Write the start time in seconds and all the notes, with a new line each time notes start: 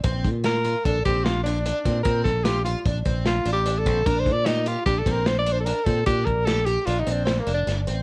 0.04 A#1 C4, kick, closed hi-hat
0.24 A#2, kick, closed hi-hat
0.44 F4 A#4, snare, closed hi-hat
0.65 F4, closed hi-hat
0.85 A#1 D4 A4, kick, closed hi-hat
1.05 A#1 C4 G4, kick, closed hi-hat
1.24 F4, snare, closed hi-hat
1.43 D4, snare, closed hi-hat
1.65 D4, closed hi-hat
1.85 A#2 C4, kick, snare, closed hi-hat
2.03 A#2 C4 A#4, kick, closed hi-hat
2.24 A#1 A4, kick, snare, closed hi-hat
2.44 F4 G4, snare, closed hi-hat
2.65 F4, closed hi-hat
2.85 A#1 D4, kick, closed hi-hat
3.05 A#1 C4, kick, closed hi-hat
3.26 F4, snare, closed hi-hat
3.45 A1 D4, closed hi-hat
3.53 G4
3.66 D4, closed hi-hat
3.78 A4
3.86 A#1 C4, kick, closed hi-hat
4.06 A#1 D4 A#4, kick, closed hi-hat
4.19 C5
4.26 A#2, kick, closed hi-hat
4.32 D5
4.46 D#4 G4, snare, closed hi-hat
4.66 F4 G4, closed hi-hat
4.85 A#1 D4 G4, kick, closed hi-hat
4.99 A4
5.06 A#1 C4, kick, snare, closed hi-hat
5.12 A#4
5.26 C5, snare, closed hi-hat
5.39 D5
5.46 D4, closed hi-hat
5.53 C5
5.60 A4
5.65 D4 A#4, closed hi-hat
5.85 A#2 C4 A4, kick, closed hi-hat
6.06 A#2 D4 G4, kick, closed hi-hat
6.25 A#1 A#4, kick, closed hi-hat
6.45 G4 A4, snare, closed hi-hat
6.65 G4, closed hi-hat
6.86 A#1 D4 F4, closed hi-hat
6.99 D#4
7.07 A#1 C4, closed hi-hat
7.12 D4
7.25 C4, snare, closed hi-hat
7.40 A#3
7.47 F1 D4, closed hi-hat
7.54 D4
7.67 G1 D4, snare, closed hi-hat
7.87 A1 C4, closed hi-hat